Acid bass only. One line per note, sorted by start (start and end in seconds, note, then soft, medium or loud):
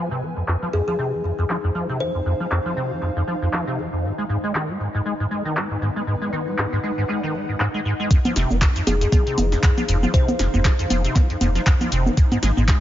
0.11 0.24 C3 loud
0.22 0.34 F3 medium
0.37 0.43 F2 medium
0.48 0.56 F2 loud
0.62 0.68 F3 loud
0.73 0.81 F2 loud
0.88 0.97 F3 loud
0.99 1.15 C3 medium
1.13 1.22 F3 medium
1.24 1.32 F2 medium
1.39 1.45 F2 loud
1.50 1.57 F3 loud
1.64 1.70 F2 loud
1.75 1.87 F3 medium
1.89 2.02 C3 loud
2.00 2.12 F3 medium
2.15 2.21 F2 medium
2.26 2.34 F2 loud
2.40 2.46 F3 loud
2.51 2.59 F2 loud
2.66 2.75 F3 loud
2.77 2.93 C3 loud
2.91 3.00 F3 medium
3.02 3.10 F2 medium
3.16 3.23 F2 loud
3.27 3.35 F3 loud
3.42 3.48 F2 loud
3.53 3.65 F3 loud
3.67 3.80 C3 loud
3.78 3.90 F3 medium
3.93 4.05 F2 medium
4.04 4.12 G#2 loud
4.18 4.24 G#3 loud
4.29 4.37 G#2 loud
4.44 4.53 G#3 loud
4.55 4.71 D#3 loud
4.69 4.78 G#3 medium
4.80 4.88 G#2 medium
4.95 5.01 G#2 loud
5.06 5.13 G#3 loud
5.20 5.26 G#2 loud
5.31 5.43 G#3 loud
5.45 5.58 D#3 loud
5.56 5.68 G#3 medium
5.71 5.77 G#2 medium
5.82 5.90 G#2 loud
5.96 6.02 G#3 loud
6.07 6.15 G#2 loud
6.22 6.31 G#3 loud
6.33 6.48 D#3 loud
6.47 6.56 G#3 medium
6.58 6.66 G#2 medium
6.73 6.79 G#2 loud
6.83 6.91 G#3 loud
6.98 7.04 G#2 loud
7.09 7.21 G#3 loud
7.23 7.36 D#3 loud
7.34 7.46 G#3 medium
7.49 7.55 G#2 medium
7.60 7.68 G#2 loud
7.74 7.80 G#3 loud
7.85 7.93 G#2 loud
8.00 8.09 G#3 loud
8.11 8.19 F2 loud
8.25 8.34 F3 loud
8.36 8.52 C3 loud
8.50 8.60 F3 medium
8.61 8.69 F2 medium
8.76 8.82 F2 loud
8.87 8.95 F3 loud
9.01 9.07 F2 loud
9.12 9.24 F3 loud
9.27 9.39 C3 loud
9.38 9.50 F3 medium
9.52 9.58 F2 medium
9.63 9.71 F2 loud
9.77 9.84 F3 loud
9.89 9.97 F2 loud
10.03 10.12 F3 loud
10.14 10.30 C3 loud
10.28 10.37 F3 medium
10.39 10.47 F2 medium
10.54 10.60 F2 loud
10.65 10.73 F3 loud
10.79 10.85 F2 loud
10.90 11.02 F3 loud
11.05 11.17 C3 loud
11.16 11.28 F3 medium
11.30 11.36 F2 medium
11.41 11.49 F2 loud
11.55 11.61 F3 loud
11.66 11.74 F2 loud
11.81 11.90 F3 loud
11.92 12.08 C3 loud
12.06 12.15 F3 medium
12.17 12.25 G#2 medium
12.32 12.38 G#2 loud
12.42 12.51 G#3 loud
12.57 12.63 G#2 loud
12.68 12.80 G#3 loud